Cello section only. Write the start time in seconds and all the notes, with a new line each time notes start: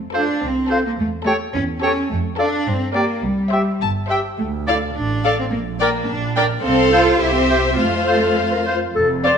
0.14 D4
0.42 C4
0.85 A#3
0.98 A3
1.26 A3
1.54 C#4
1.82 C#4
2.10 A3
2.38 D4
2.67 C4
2.95 A#3
3.23 G3
4.38 A3
4.67 E4
4.95 D4
5.40 C4
5.52 A#3
5.80 A#3
6.08 D4
6.36 D4
6.64 C4
6.92 F4
7.20 E4
7.35 C4
7.78 A3
8.95 F2